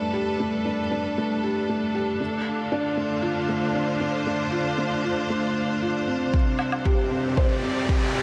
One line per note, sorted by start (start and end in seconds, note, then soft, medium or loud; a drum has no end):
0.00 2.20 G3 medium
0.00 0.40 A3 medium
0.00 0.65 D4 medium
0.00 7.46 D4 medium
0.00 0.13 G4 medium
0.00 3.67 A4 medium
0.00 2.20 B4 medium
0.13 0.28 G4 medium
0.40 0.64 A3 medium
0.65 0.80 D4 medium
0.91 1.16 D4 medium
1.18 1.32 A3 medium
1.44 1.58 G4 medium
1.69 1.93 A3 medium
1.95 2.19 G4 medium
2.19 6.34 D3 medium
2.19 2.45 A3 medium
2.42 7.21 F4 medium
2.72 2.96 D4 medium
2.90 7.79 C5 medium
2.97 3.12 A3 medium
3.22 3.38 F4 medium
3.49 3.74 A3 medium
3.75 3.90 D4 medium
4.00 4.25 D4 medium
4.27 4.42 A3 medium
4.52 4.67 F4 medium
4.78 5.03 A3 medium
5.04 5.29 F4 medium
5.30 5.55 A3 medium
5.82 5.97 F4 medium
6.08 6.32 C4 medium
6.33 8.23 C2 medium
6.33 8.23 C3 medium
6.33 6.58 C4 medium
6.33 kick medium
6.33 riser medium
6.59 8.23 C4 medium
6.59 low woodblock medium
6.72 low woodblock medium
6.85 7.10 G4 medium
6.85 kick medium
7.06 8.23 G4 medium
7.11 7.26 C4 medium
7.37 7.52 C5 medium
7.37 kick medium
7.43 8.23 D5 medium
7.63 7.88 C4 medium
7.89 8.04 G4 medium
7.89 kick loud
8.15 8.23 G4 medium